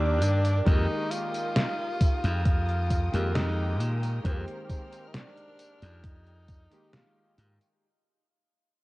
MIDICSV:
0, 0, Header, 1, 6, 480
1, 0, Start_track
1, 0, Tempo, 895522
1, 357, Time_signature, 4, 2, 24, 8
1, 4737, End_track
2, 0, Start_track
2, 0, Title_t, "String section"
2, 0, Program_c, 0, 48
2, 0, Note_on_c, 0, 74, 82
2, 0, Note_on_c, 0, 79, 71
2, 0, Note_on_c, 0, 82, 73
2, 0, Note_on_c, 0, 86, 92
2, 336, Note_off_c, 0, 74, 0
2, 336, Note_off_c, 0, 82, 0
2, 337, Note_off_c, 0, 79, 0
2, 338, Note_off_c, 0, 86, 0
2, 356, Note_on_c, 0, 87, 92
2, 357, Note_on_c, 0, 79, 74
2, 358, Note_on_c, 0, 70, 80
2, 2257, Note_off_c, 0, 87, 0
2, 2279, Note_on_c, 0, 89, 90
2, 4175, Note_off_c, 0, 79, 0
2, 4176, Note_off_c, 0, 70, 0
2, 4178, Note_off_c, 0, 89, 0
2, 4737, End_track
3, 0, Start_track
3, 0, Title_t, "Tenor saxophone"
3, 0, Program_c, 1, 66
3, 0, Note_on_c, 1, 62, 110
3, 355, Note_on_c, 1, 63, 116
3, 363, Note_off_c, 1, 62, 0
3, 594, Note_on_c, 1, 65, 127
3, 602, Note_off_c, 1, 63, 0
3, 1313, Note_off_c, 1, 65, 0
3, 1316, Note_on_c, 1, 65, 125
3, 1775, Note_off_c, 1, 65, 0
3, 1793, Note_on_c, 1, 63, 110
3, 2112, Note_off_c, 1, 63, 0
3, 2275, Note_on_c, 1, 60, 98
3, 2316, Note_on_c, 1, 58, 88
3, 2324, Note_off_c, 1, 60, 0
3, 2351, Note_on_c, 1, 60, 104
3, 2359, Note_off_c, 1, 58, 0
3, 2719, Note_on_c, 1, 63, 68
3, 2727, Note_off_c, 1, 60, 0
3, 2754, Note_on_c, 1, 62, 105
3, 2762, Note_off_c, 1, 63, 0
3, 3235, Note_on_c, 1, 63, 108
3, 3243, Note_off_c, 1, 62, 0
3, 3715, Note_on_c, 1, 65, 97
3, 3723, Note_off_c, 1, 63, 0
3, 4079, Note_off_c, 1, 65, 0
3, 4737, End_track
4, 0, Start_track
4, 0, Title_t, "Electric grand piano"
4, 0, Program_c, 2, 2
4, 0, Control_c, 2, 64, 127
4, 0, Note_on_c, 2, 51, 87
4, 0, Note_on_c, 2, 58, 76
4, 0, Note_on_c, 2, 62, 81
4, 0, Note_on_c, 2, 67, 96
4, 324, Note_off_c, 2, 51, 0
4, 327, Note_off_c, 2, 58, 0
4, 330, Note_off_c, 2, 62, 0
4, 332, Note_off_c, 2, 67, 0
4, 349, Note_on_c, 2, 51, 82
4, 353, Note_on_c, 2, 56, 73
4, 359, Note_on_c, 2, 58, 75
4, 364, Control_c, 2, 64, 0
4, 364, Note_on_c, 2, 67, 86
4, 457, Control_c, 2, 64, 127
4, 1647, Note_off_c, 2, 51, 0
4, 1649, Note_off_c, 2, 56, 0
4, 1652, Note_off_c, 2, 58, 0
4, 1655, Note_off_c, 2, 67, 0
4, 1673, Note_on_c, 2, 51, 85
4, 1678, Note_on_c, 2, 56, 83
4, 1684, Note_on_c, 2, 58, 83
4, 1688, Note_on_c, 2, 67, 100
4, 2245, Note_off_c, 2, 51, 0
4, 2248, Note_off_c, 2, 56, 0
4, 2250, Note_off_c, 2, 58, 0
4, 2253, Note_off_c, 2, 67, 0
4, 2269, Note_on_c, 2, 51, 79
4, 2274, Note_on_c, 2, 56, 74
4, 2280, Note_on_c, 2, 58, 73
4, 2285, Note_on_c, 2, 67, 87
4, 3567, Note_off_c, 2, 51, 0
4, 3570, Note_off_c, 2, 56, 0
4, 3572, Note_off_c, 2, 58, 0
4, 3575, Note_off_c, 2, 67, 0
4, 3594, Note_on_c, 2, 51, 88
4, 3599, Note_on_c, 2, 56, 80
4, 3604, Note_on_c, 2, 58, 79
4, 3609, Note_on_c, 2, 67, 98
4, 4165, Note_off_c, 2, 51, 0
4, 4168, Note_off_c, 2, 56, 0
4, 4170, Note_off_c, 2, 58, 0
4, 4173, Note_off_c, 2, 67, 0
4, 4205, Control_c, 2, 64, 0
4, 4737, End_track
5, 0, Start_track
5, 0, Title_t, "Slap bass"
5, 0, Program_c, 3, 36
5, 0, Note_on_c, 3, 39, 86
5, 118, Note_off_c, 3, 39, 0
5, 118, Note_on_c, 3, 43, 84
5, 321, Note_off_c, 3, 43, 0
5, 357, Note_on_c, 3, 41, 94
5, 462, Note_off_c, 3, 41, 0
5, 1201, Note_on_c, 3, 41, 96
5, 1650, Note_off_c, 3, 41, 0
5, 1682, Note_on_c, 3, 41, 84
5, 2036, Note_off_c, 3, 41, 0
5, 2036, Note_on_c, 3, 46, 82
5, 2241, Note_off_c, 3, 46, 0
5, 2278, Note_on_c, 3, 41, 99
5, 2382, Note_off_c, 3, 41, 0
5, 3121, Note_on_c, 3, 41, 98
5, 3570, Note_off_c, 3, 41, 0
5, 3957, Note_on_c, 3, 44, 98
5, 4061, Note_off_c, 3, 44, 0
5, 4737, End_track
6, 0, Start_track
6, 0, Title_t, "Drums"
6, 116, Note_on_c, 9, 42, 79
6, 116, Note_on_c, 9, 54, 70
6, 170, Note_off_c, 9, 42, 0
6, 170, Note_off_c, 9, 54, 0
6, 240, Note_on_c, 9, 42, 52
6, 240, Note_on_c, 9, 54, 37
6, 293, Note_off_c, 9, 42, 0
6, 293, Note_off_c, 9, 54, 0
6, 356, Note_on_c, 9, 42, 78
6, 356, Note_on_c, 9, 54, 29
6, 357, Note_on_c, 9, 36, 115
6, 410, Note_off_c, 9, 36, 0
6, 410, Note_off_c, 9, 42, 0
6, 410, Note_off_c, 9, 54, 0
6, 596, Note_on_c, 9, 42, 76
6, 596, Note_on_c, 9, 54, 65
6, 650, Note_off_c, 9, 42, 0
6, 650, Note_off_c, 9, 54, 0
6, 720, Note_on_c, 9, 42, 54
6, 720, Note_on_c, 9, 54, 41
6, 774, Note_off_c, 9, 42, 0
6, 774, Note_off_c, 9, 54, 0
6, 837, Note_on_c, 9, 38, 117
6, 837, Note_on_c, 9, 42, 78
6, 837, Note_on_c, 9, 54, 28
6, 890, Note_off_c, 9, 38, 0
6, 890, Note_off_c, 9, 42, 0
6, 890, Note_off_c, 9, 54, 0
6, 1076, Note_on_c, 9, 42, 75
6, 1076, Note_on_c, 9, 54, 65
6, 1077, Note_on_c, 9, 36, 106
6, 1129, Note_off_c, 9, 42, 0
6, 1129, Note_off_c, 9, 54, 0
6, 1131, Note_off_c, 9, 36, 0
6, 1200, Note_on_c, 9, 42, 50
6, 1200, Note_on_c, 9, 54, 39
6, 1254, Note_off_c, 9, 42, 0
6, 1254, Note_off_c, 9, 54, 0
6, 1316, Note_on_c, 9, 42, 76
6, 1316, Note_on_c, 9, 54, 28
6, 1317, Note_on_c, 9, 36, 121
6, 1369, Note_off_c, 9, 42, 0
6, 1369, Note_off_c, 9, 54, 0
6, 1370, Note_off_c, 9, 36, 0
6, 1441, Note_on_c, 9, 42, 35
6, 1494, Note_off_c, 9, 42, 0
6, 1557, Note_on_c, 9, 36, 61
6, 1557, Note_on_c, 9, 42, 81
6, 1557, Note_on_c, 9, 54, 66
6, 1610, Note_off_c, 9, 36, 0
6, 1610, Note_off_c, 9, 42, 0
6, 1610, Note_off_c, 9, 54, 0
6, 1681, Note_on_c, 9, 42, 54
6, 1681, Note_on_c, 9, 54, 38
6, 1734, Note_off_c, 9, 42, 0
6, 1734, Note_off_c, 9, 54, 0
6, 1797, Note_on_c, 9, 38, 111
6, 1797, Note_on_c, 9, 42, 79
6, 1797, Note_on_c, 9, 54, 27
6, 1851, Note_off_c, 9, 38, 0
6, 1851, Note_off_c, 9, 42, 0
6, 1851, Note_off_c, 9, 54, 0
6, 2038, Note_on_c, 9, 42, 79
6, 2038, Note_on_c, 9, 54, 69
6, 2092, Note_off_c, 9, 42, 0
6, 2092, Note_off_c, 9, 54, 0
6, 2160, Note_on_c, 9, 42, 53
6, 2160, Note_on_c, 9, 54, 37
6, 2214, Note_off_c, 9, 42, 0
6, 2214, Note_off_c, 9, 54, 0
6, 2277, Note_on_c, 9, 36, 114
6, 2278, Note_on_c, 9, 42, 82
6, 2278, Note_on_c, 9, 54, 29
6, 2331, Note_off_c, 9, 36, 0
6, 2331, Note_off_c, 9, 42, 0
6, 2331, Note_off_c, 9, 54, 0
6, 2400, Note_on_c, 9, 42, 41
6, 2454, Note_off_c, 9, 42, 0
6, 2517, Note_on_c, 9, 36, 61
6, 2517, Note_on_c, 9, 42, 78
6, 2517, Note_on_c, 9, 54, 66
6, 2570, Note_off_c, 9, 42, 0
6, 2570, Note_off_c, 9, 54, 0
6, 2571, Note_off_c, 9, 36, 0
6, 2640, Note_on_c, 9, 42, 58
6, 2640, Note_on_c, 9, 54, 40
6, 2694, Note_off_c, 9, 42, 0
6, 2694, Note_off_c, 9, 54, 0
6, 2756, Note_on_c, 9, 38, 117
6, 2756, Note_on_c, 9, 42, 83
6, 2756, Note_on_c, 9, 54, 28
6, 2809, Note_off_c, 9, 38, 0
6, 2809, Note_off_c, 9, 42, 0
6, 2809, Note_off_c, 9, 54, 0
6, 2880, Note_on_c, 9, 42, 37
6, 2934, Note_off_c, 9, 42, 0
6, 2996, Note_on_c, 9, 42, 79
6, 2996, Note_on_c, 9, 54, 69
6, 3050, Note_off_c, 9, 42, 0
6, 3050, Note_off_c, 9, 54, 0
6, 3120, Note_on_c, 9, 42, 53
6, 3120, Note_on_c, 9, 54, 38
6, 3173, Note_off_c, 9, 42, 0
6, 3173, Note_off_c, 9, 54, 0
6, 3235, Note_on_c, 9, 42, 82
6, 3235, Note_on_c, 9, 54, 28
6, 3237, Note_on_c, 9, 36, 116
6, 3289, Note_off_c, 9, 42, 0
6, 3289, Note_off_c, 9, 54, 0
6, 3290, Note_off_c, 9, 36, 0
6, 3359, Note_on_c, 9, 42, 37
6, 3412, Note_off_c, 9, 42, 0
6, 3475, Note_on_c, 9, 42, 81
6, 3475, Note_on_c, 9, 54, 68
6, 3477, Note_on_c, 9, 36, 105
6, 3529, Note_off_c, 9, 42, 0
6, 3529, Note_off_c, 9, 54, 0
6, 3530, Note_off_c, 9, 36, 0
6, 3600, Note_on_c, 9, 42, 56
6, 3600, Note_on_c, 9, 54, 41
6, 3653, Note_off_c, 9, 42, 0
6, 3653, Note_off_c, 9, 54, 0
6, 3716, Note_on_c, 9, 38, 115
6, 3716, Note_on_c, 9, 42, 82
6, 3716, Note_on_c, 9, 54, 29
6, 3770, Note_off_c, 9, 38, 0
6, 3770, Note_off_c, 9, 42, 0
6, 3770, Note_off_c, 9, 54, 0
6, 3956, Note_on_c, 9, 42, 84
6, 3956, Note_on_c, 9, 54, 72
6, 4010, Note_off_c, 9, 42, 0
6, 4010, Note_off_c, 9, 54, 0
6, 4080, Note_on_c, 9, 42, 52
6, 4080, Note_on_c, 9, 54, 38
6, 4133, Note_off_c, 9, 42, 0
6, 4133, Note_off_c, 9, 54, 0
6, 4737, End_track
0, 0, End_of_file